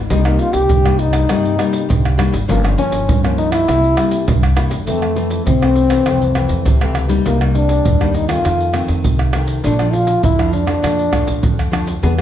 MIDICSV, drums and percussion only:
0, 0, Header, 1, 4, 480
1, 0, Start_track
1, 0, Tempo, 596421
1, 80, Time_signature, 4, 2, 24, 8
1, 9831, End_track
2, 0, Start_track
2, 0, Title_t, "Pandeiro"
2, 83, Note_on_c, 9, 54, 87
2, 163, Note_off_c, 9, 54, 0
2, 202, Note_on_c, 9, 54, 37
2, 283, Note_off_c, 9, 54, 0
2, 313, Note_on_c, 9, 54, 53
2, 393, Note_off_c, 9, 54, 0
2, 429, Note_on_c, 9, 54, 70
2, 509, Note_off_c, 9, 54, 0
2, 558, Note_on_c, 9, 54, 69
2, 638, Note_off_c, 9, 54, 0
2, 688, Note_on_c, 9, 54, 32
2, 769, Note_off_c, 9, 54, 0
2, 795, Note_on_c, 9, 54, 52
2, 876, Note_off_c, 9, 54, 0
2, 909, Note_on_c, 9, 54, 72
2, 990, Note_off_c, 9, 54, 0
2, 1040, Note_on_c, 9, 54, 85
2, 1121, Note_off_c, 9, 54, 0
2, 1170, Note_on_c, 9, 54, 33
2, 1251, Note_off_c, 9, 54, 0
2, 1279, Note_on_c, 9, 54, 63
2, 1360, Note_off_c, 9, 54, 0
2, 1392, Note_on_c, 9, 54, 68
2, 1473, Note_off_c, 9, 54, 0
2, 1529, Note_on_c, 9, 54, 89
2, 1610, Note_off_c, 9, 54, 0
2, 1653, Note_on_c, 9, 54, 36
2, 1734, Note_off_c, 9, 54, 0
2, 1762, Note_on_c, 9, 54, 70
2, 1842, Note_off_c, 9, 54, 0
2, 1879, Note_on_c, 9, 54, 75
2, 1960, Note_off_c, 9, 54, 0
2, 2005, Note_on_c, 9, 54, 86
2, 2086, Note_off_c, 9, 54, 0
2, 2128, Note_on_c, 9, 54, 36
2, 2209, Note_off_c, 9, 54, 0
2, 2238, Note_on_c, 9, 54, 65
2, 2318, Note_off_c, 9, 54, 0
2, 2352, Note_on_c, 9, 54, 73
2, 2432, Note_off_c, 9, 54, 0
2, 2486, Note_on_c, 9, 54, 83
2, 2567, Note_off_c, 9, 54, 0
2, 2612, Note_on_c, 9, 54, 33
2, 2692, Note_off_c, 9, 54, 0
2, 2720, Note_on_c, 9, 54, 57
2, 2801, Note_off_c, 9, 54, 0
2, 2834, Note_on_c, 9, 54, 73
2, 2915, Note_off_c, 9, 54, 0
2, 2965, Note_on_c, 9, 54, 83
2, 3045, Note_off_c, 9, 54, 0
2, 3091, Note_on_c, 9, 54, 32
2, 3171, Note_off_c, 9, 54, 0
2, 3196, Note_on_c, 9, 54, 57
2, 3277, Note_off_c, 9, 54, 0
2, 3310, Note_on_c, 9, 54, 66
2, 3390, Note_off_c, 9, 54, 0
2, 3443, Note_on_c, 9, 54, 91
2, 3523, Note_off_c, 9, 54, 0
2, 3567, Note_on_c, 9, 54, 37
2, 3648, Note_off_c, 9, 54, 0
2, 3675, Note_on_c, 9, 54, 75
2, 3755, Note_off_c, 9, 54, 0
2, 3789, Note_on_c, 9, 54, 72
2, 3869, Note_off_c, 9, 54, 0
2, 3920, Note_on_c, 9, 54, 78
2, 4001, Note_off_c, 9, 54, 0
2, 4042, Note_on_c, 9, 54, 33
2, 4122, Note_off_c, 9, 54, 0
2, 4156, Note_on_c, 9, 54, 57
2, 4236, Note_off_c, 9, 54, 0
2, 4270, Note_on_c, 9, 54, 65
2, 4350, Note_off_c, 9, 54, 0
2, 4399, Note_on_c, 9, 54, 76
2, 4479, Note_off_c, 9, 54, 0
2, 4527, Note_on_c, 9, 54, 29
2, 4607, Note_off_c, 9, 54, 0
2, 4632, Note_on_c, 9, 54, 53
2, 4713, Note_off_c, 9, 54, 0
2, 4749, Note_on_c, 9, 54, 67
2, 4830, Note_off_c, 9, 54, 0
2, 4876, Note_on_c, 9, 54, 82
2, 4957, Note_off_c, 9, 54, 0
2, 5002, Note_on_c, 9, 54, 34
2, 5083, Note_off_c, 9, 54, 0
2, 5112, Note_on_c, 9, 54, 57
2, 5192, Note_off_c, 9, 54, 0
2, 5224, Note_on_c, 9, 54, 64
2, 5305, Note_off_c, 9, 54, 0
2, 5356, Note_on_c, 9, 54, 82
2, 5436, Note_off_c, 9, 54, 0
2, 5483, Note_on_c, 9, 54, 34
2, 5564, Note_off_c, 9, 54, 0
2, 5592, Note_on_c, 9, 54, 61
2, 5672, Note_off_c, 9, 54, 0
2, 5709, Note_on_c, 9, 54, 64
2, 5789, Note_off_c, 9, 54, 0
2, 5839, Note_on_c, 9, 54, 83
2, 5920, Note_off_c, 9, 54, 0
2, 5965, Note_on_c, 9, 54, 34
2, 6045, Note_off_c, 9, 54, 0
2, 6076, Note_on_c, 9, 54, 62
2, 6157, Note_off_c, 9, 54, 0
2, 6189, Note_on_c, 9, 54, 67
2, 6270, Note_off_c, 9, 54, 0
2, 6321, Note_on_c, 9, 54, 75
2, 6401, Note_off_c, 9, 54, 0
2, 6446, Note_on_c, 9, 54, 33
2, 6527, Note_off_c, 9, 54, 0
2, 6554, Note_on_c, 9, 54, 54
2, 6634, Note_off_c, 9, 54, 0
2, 6672, Note_on_c, 9, 54, 68
2, 6752, Note_off_c, 9, 54, 0
2, 6800, Note_on_c, 9, 54, 81
2, 6880, Note_off_c, 9, 54, 0
2, 6925, Note_on_c, 9, 54, 31
2, 7005, Note_off_c, 9, 54, 0
2, 7030, Note_on_c, 9, 54, 56
2, 7111, Note_off_c, 9, 54, 0
2, 7149, Note_on_c, 9, 54, 65
2, 7230, Note_off_c, 9, 54, 0
2, 7278, Note_on_c, 9, 54, 81
2, 7358, Note_off_c, 9, 54, 0
2, 7398, Note_on_c, 9, 54, 35
2, 7478, Note_off_c, 9, 54, 0
2, 7509, Note_on_c, 9, 54, 63
2, 7589, Note_off_c, 9, 54, 0
2, 7624, Note_on_c, 9, 54, 61
2, 7705, Note_off_c, 9, 54, 0
2, 7757, Note_on_c, 9, 54, 82
2, 7837, Note_off_c, 9, 54, 0
2, 7880, Note_on_c, 9, 54, 30
2, 7961, Note_off_c, 9, 54, 0
2, 7994, Note_on_c, 9, 54, 54
2, 8074, Note_off_c, 9, 54, 0
2, 8105, Note_on_c, 9, 54, 70
2, 8185, Note_off_c, 9, 54, 0
2, 8236, Note_on_c, 9, 54, 75
2, 8316, Note_off_c, 9, 54, 0
2, 8364, Note_on_c, 9, 54, 37
2, 8444, Note_off_c, 9, 54, 0
2, 8474, Note_on_c, 9, 54, 52
2, 8555, Note_off_c, 9, 54, 0
2, 8590, Note_on_c, 9, 54, 65
2, 8670, Note_off_c, 9, 54, 0
2, 8723, Note_on_c, 9, 54, 82
2, 8804, Note_off_c, 9, 54, 0
2, 8845, Note_on_c, 9, 54, 31
2, 8926, Note_off_c, 9, 54, 0
2, 8954, Note_on_c, 9, 54, 63
2, 9035, Note_off_c, 9, 54, 0
2, 9072, Note_on_c, 9, 54, 66
2, 9153, Note_off_c, 9, 54, 0
2, 9200, Note_on_c, 9, 54, 77
2, 9280, Note_off_c, 9, 54, 0
2, 9329, Note_on_c, 9, 54, 32
2, 9410, Note_off_c, 9, 54, 0
2, 9443, Note_on_c, 9, 54, 65
2, 9523, Note_off_c, 9, 54, 0
2, 9556, Note_on_c, 9, 54, 66
2, 9636, Note_off_c, 9, 54, 0
2, 9684, Note_on_c, 9, 54, 81
2, 9765, Note_off_c, 9, 54, 0
2, 9806, Note_on_c, 9, 54, 35
2, 9831, Note_off_c, 9, 54, 0
2, 9831, End_track
3, 0, Start_track
3, 0, Title_t, "Tamborim"
3, 202, Note_on_c, 9, 60, 89
3, 283, Note_off_c, 9, 60, 0
3, 688, Note_on_c, 9, 60, 85
3, 769, Note_off_c, 9, 60, 0
3, 909, Note_on_c, 9, 60, 84
3, 990, Note_off_c, 9, 60, 0
3, 1040, Note_on_c, 9, 60, 83
3, 1121, Note_off_c, 9, 60, 0
3, 1279, Note_on_c, 9, 60, 83
3, 1360, Note_off_c, 9, 60, 0
3, 1653, Note_on_c, 9, 60, 82
3, 1734, Note_off_c, 9, 60, 0
3, 1762, Note_on_c, 9, 60, 97
3, 1842, Note_off_c, 9, 60, 0
3, 2128, Note_on_c, 9, 60, 78
3, 2209, Note_off_c, 9, 60, 0
3, 2612, Note_on_c, 9, 60, 82
3, 2692, Note_off_c, 9, 60, 0
3, 2834, Note_on_c, 9, 60, 84
3, 2915, Note_off_c, 9, 60, 0
3, 2965, Note_on_c, 9, 60, 74
3, 3045, Note_off_c, 9, 60, 0
3, 3196, Note_on_c, 9, 60, 84
3, 3277, Note_off_c, 9, 60, 0
3, 3567, Note_on_c, 9, 60, 86
3, 3648, Note_off_c, 9, 60, 0
3, 3675, Note_on_c, 9, 60, 93
3, 3755, Note_off_c, 9, 60, 0
3, 4042, Note_on_c, 9, 60, 73
3, 4122, Note_off_c, 9, 60, 0
3, 4527, Note_on_c, 9, 60, 78
3, 4607, Note_off_c, 9, 60, 0
3, 4749, Note_on_c, 9, 60, 84
3, 4830, Note_off_c, 9, 60, 0
3, 4876, Note_on_c, 9, 60, 86
3, 4957, Note_off_c, 9, 60, 0
3, 5112, Note_on_c, 9, 60, 85
3, 5192, Note_off_c, 9, 60, 0
3, 5483, Note_on_c, 9, 60, 83
3, 5564, Note_off_c, 9, 60, 0
3, 5592, Note_on_c, 9, 60, 90
3, 5672, Note_off_c, 9, 60, 0
3, 5965, Note_on_c, 9, 60, 82
3, 6045, Note_off_c, 9, 60, 0
3, 6446, Note_on_c, 9, 60, 77
3, 6527, Note_off_c, 9, 60, 0
3, 6672, Note_on_c, 9, 60, 86
3, 6752, Note_off_c, 9, 60, 0
3, 6800, Note_on_c, 9, 60, 76
3, 6880, Note_off_c, 9, 60, 0
3, 7030, Note_on_c, 9, 60, 80
3, 7111, Note_off_c, 9, 60, 0
3, 7398, Note_on_c, 9, 60, 84
3, 7478, Note_off_c, 9, 60, 0
3, 7509, Note_on_c, 9, 60, 92
3, 7589, Note_off_c, 9, 60, 0
3, 7880, Note_on_c, 9, 60, 76
3, 7961, Note_off_c, 9, 60, 0
3, 8364, Note_on_c, 9, 60, 80
3, 8444, Note_off_c, 9, 60, 0
3, 8590, Note_on_c, 9, 60, 83
3, 8670, Note_off_c, 9, 60, 0
3, 8723, Note_on_c, 9, 60, 86
3, 8804, Note_off_c, 9, 60, 0
3, 8954, Note_on_c, 9, 60, 82
3, 9035, Note_off_c, 9, 60, 0
3, 9329, Note_on_c, 9, 60, 75
3, 9410, Note_off_c, 9, 60, 0
3, 9443, Note_on_c, 9, 60, 99
3, 9523, Note_off_c, 9, 60, 0
3, 9806, Note_on_c, 9, 60, 73
3, 9831, Note_off_c, 9, 60, 0
3, 9831, End_track
4, 0, Start_track
4, 0, Title_t, "Drums"
4, 83, Note_on_c, 9, 82, 76
4, 83, Note_on_c, 9, 87, 60
4, 163, Note_off_c, 9, 82, 0
4, 163, Note_off_c, 9, 87, 0
4, 202, Note_on_c, 9, 82, 35
4, 283, Note_off_c, 9, 82, 0
4, 429, Note_on_c, 9, 82, 80
4, 509, Note_off_c, 9, 82, 0
4, 558, Note_on_c, 9, 82, 81
4, 558, Note_on_c, 9, 87, 96
4, 638, Note_off_c, 9, 82, 0
4, 638, Note_off_c, 9, 87, 0
4, 688, Note_on_c, 9, 82, 31
4, 769, Note_off_c, 9, 82, 0
4, 795, Note_on_c, 9, 82, 73
4, 876, Note_off_c, 9, 82, 0
4, 909, Note_on_c, 9, 82, 86
4, 990, Note_off_c, 9, 82, 0
4, 1040, Note_on_c, 9, 82, 76
4, 1040, Note_on_c, 9, 87, 58
4, 1121, Note_off_c, 9, 82, 0
4, 1121, Note_off_c, 9, 87, 0
4, 1170, Note_on_c, 9, 82, 34
4, 1251, Note_off_c, 9, 82, 0
4, 1279, Note_on_c, 9, 82, 80
4, 1360, Note_off_c, 9, 82, 0
4, 1392, Note_on_c, 9, 82, 81
4, 1473, Note_off_c, 9, 82, 0
4, 1529, Note_on_c, 9, 82, 86
4, 1529, Note_on_c, 9, 87, 103
4, 1610, Note_off_c, 9, 82, 0
4, 1610, Note_off_c, 9, 87, 0
4, 1653, Note_on_c, 9, 82, 34
4, 1734, Note_off_c, 9, 82, 0
4, 1762, Note_on_c, 9, 82, 81
4, 1842, Note_off_c, 9, 82, 0
4, 1879, Note_on_c, 9, 82, 85
4, 1960, Note_off_c, 9, 82, 0
4, 2005, Note_on_c, 9, 82, 87
4, 2005, Note_on_c, 9, 87, 61
4, 2086, Note_off_c, 9, 82, 0
4, 2086, Note_off_c, 9, 87, 0
4, 2128, Note_on_c, 9, 82, 36
4, 2209, Note_off_c, 9, 82, 0
4, 2352, Note_on_c, 9, 82, 90
4, 2432, Note_off_c, 9, 82, 0
4, 2486, Note_on_c, 9, 82, 74
4, 2486, Note_on_c, 9, 87, 104
4, 2567, Note_off_c, 9, 82, 0
4, 2567, Note_off_c, 9, 87, 0
4, 2612, Note_on_c, 9, 82, 35
4, 2692, Note_off_c, 9, 82, 0
4, 2834, Note_on_c, 9, 82, 82
4, 2915, Note_off_c, 9, 82, 0
4, 2965, Note_on_c, 9, 82, 83
4, 2965, Note_on_c, 9, 87, 58
4, 3045, Note_off_c, 9, 82, 0
4, 3045, Note_off_c, 9, 87, 0
4, 3091, Note_on_c, 9, 82, 33
4, 3171, Note_off_c, 9, 82, 0
4, 3310, Note_on_c, 9, 82, 79
4, 3390, Note_off_c, 9, 82, 0
4, 3443, Note_on_c, 9, 82, 88
4, 3443, Note_on_c, 9, 87, 109
4, 3523, Note_off_c, 9, 82, 0
4, 3523, Note_off_c, 9, 87, 0
4, 3567, Note_on_c, 9, 82, 34
4, 3648, Note_off_c, 9, 82, 0
4, 3789, Note_on_c, 9, 82, 94
4, 3869, Note_off_c, 9, 82, 0
4, 3920, Note_on_c, 9, 82, 84
4, 3920, Note_on_c, 9, 87, 58
4, 4001, Note_off_c, 9, 82, 0
4, 4001, Note_off_c, 9, 87, 0
4, 4042, Note_on_c, 9, 82, 33
4, 4122, Note_off_c, 9, 82, 0
4, 4156, Note_on_c, 9, 82, 67
4, 4236, Note_off_c, 9, 82, 0
4, 4270, Note_on_c, 9, 82, 77
4, 4350, Note_off_c, 9, 82, 0
4, 4399, Note_on_c, 9, 82, 79
4, 4399, Note_on_c, 9, 87, 100
4, 4479, Note_off_c, 9, 82, 0
4, 4479, Note_off_c, 9, 87, 0
4, 4527, Note_on_c, 9, 82, 32
4, 4607, Note_off_c, 9, 82, 0
4, 4749, Note_on_c, 9, 82, 77
4, 4830, Note_off_c, 9, 82, 0
4, 4876, Note_on_c, 9, 82, 75
4, 4876, Note_on_c, 9, 87, 53
4, 4957, Note_off_c, 9, 82, 0
4, 4957, Note_off_c, 9, 87, 0
4, 5002, Note_on_c, 9, 82, 30
4, 5083, Note_off_c, 9, 82, 0
4, 5224, Note_on_c, 9, 82, 82
4, 5305, Note_off_c, 9, 82, 0
4, 5356, Note_on_c, 9, 82, 85
4, 5356, Note_on_c, 9, 87, 94
4, 5436, Note_off_c, 9, 82, 0
4, 5436, Note_off_c, 9, 87, 0
4, 5483, Note_on_c, 9, 82, 34
4, 5564, Note_off_c, 9, 82, 0
4, 5709, Note_on_c, 9, 82, 79
4, 5789, Note_off_c, 9, 82, 0
4, 5839, Note_on_c, 9, 82, 79
4, 5839, Note_on_c, 9, 87, 52
4, 5920, Note_off_c, 9, 82, 0
4, 5920, Note_off_c, 9, 87, 0
4, 5965, Note_on_c, 9, 82, 29
4, 6045, Note_off_c, 9, 82, 0
4, 6189, Note_on_c, 9, 82, 81
4, 6270, Note_off_c, 9, 82, 0
4, 6321, Note_on_c, 9, 82, 81
4, 6321, Note_on_c, 9, 87, 101
4, 6401, Note_off_c, 9, 82, 0
4, 6401, Note_off_c, 9, 87, 0
4, 6446, Note_on_c, 9, 82, 33
4, 6527, Note_off_c, 9, 82, 0
4, 6554, Note_on_c, 9, 82, 70
4, 6634, Note_off_c, 9, 82, 0
4, 6672, Note_on_c, 9, 82, 80
4, 6752, Note_off_c, 9, 82, 0
4, 6800, Note_on_c, 9, 82, 83
4, 6800, Note_on_c, 9, 87, 54
4, 6880, Note_off_c, 9, 82, 0
4, 6880, Note_off_c, 9, 87, 0
4, 6925, Note_on_c, 9, 82, 30
4, 7005, Note_off_c, 9, 82, 0
4, 7030, Note_on_c, 9, 82, 68
4, 7111, Note_off_c, 9, 82, 0
4, 7149, Note_on_c, 9, 82, 73
4, 7230, Note_off_c, 9, 82, 0
4, 7278, Note_on_c, 9, 82, 79
4, 7278, Note_on_c, 9, 87, 102
4, 7358, Note_off_c, 9, 82, 0
4, 7358, Note_off_c, 9, 87, 0
4, 7398, Note_on_c, 9, 82, 34
4, 7478, Note_off_c, 9, 82, 0
4, 7509, Note_on_c, 9, 82, 75
4, 7589, Note_off_c, 9, 82, 0
4, 7624, Note_on_c, 9, 82, 87
4, 7705, Note_off_c, 9, 82, 0
4, 7757, Note_on_c, 9, 82, 82
4, 7757, Note_on_c, 9, 87, 55
4, 7837, Note_off_c, 9, 82, 0
4, 7837, Note_off_c, 9, 87, 0
4, 7880, Note_on_c, 9, 82, 35
4, 7961, Note_off_c, 9, 82, 0
4, 8105, Note_on_c, 9, 82, 81
4, 8185, Note_off_c, 9, 82, 0
4, 8236, Note_on_c, 9, 82, 77
4, 8236, Note_on_c, 9, 87, 90
4, 8316, Note_off_c, 9, 82, 0
4, 8316, Note_off_c, 9, 87, 0
4, 8364, Note_on_c, 9, 82, 34
4, 8444, Note_off_c, 9, 82, 0
4, 8590, Note_on_c, 9, 82, 85
4, 8670, Note_off_c, 9, 82, 0
4, 8723, Note_on_c, 9, 82, 71
4, 8723, Note_on_c, 9, 87, 56
4, 8804, Note_off_c, 9, 82, 0
4, 8804, Note_off_c, 9, 87, 0
4, 8845, Note_on_c, 9, 82, 31
4, 8926, Note_off_c, 9, 82, 0
4, 8954, Note_on_c, 9, 87, 67
4, 9035, Note_off_c, 9, 87, 0
4, 9072, Note_on_c, 9, 82, 77
4, 9153, Note_off_c, 9, 82, 0
4, 9200, Note_on_c, 9, 82, 77
4, 9200, Note_on_c, 9, 87, 106
4, 9280, Note_off_c, 9, 82, 0
4, 9280, Note_off_c, 9, 87, 0
4, 9329, Note_on_c, 9, 82, 35
4, 9410, Note_off_c, 9, 82, 0
4, 9556, Note_on_c, 9, 82, 88
4, 9636, Note_off_c, 9, 82, 0
4, 9684, Note_on_c, 9, 82, 82
4, 9684, Note_on_c, 9, 87, 62
4, 9765, Note_off_c, 9, 82, 0
4, 9765, Note_off_c, 9, 87, 0
4, 9806, Note_on_c, 9, 82, 36
4, 9831, Note_off_c, 9, 82, 0
4, 9831, End_track
0, 0, End_of_file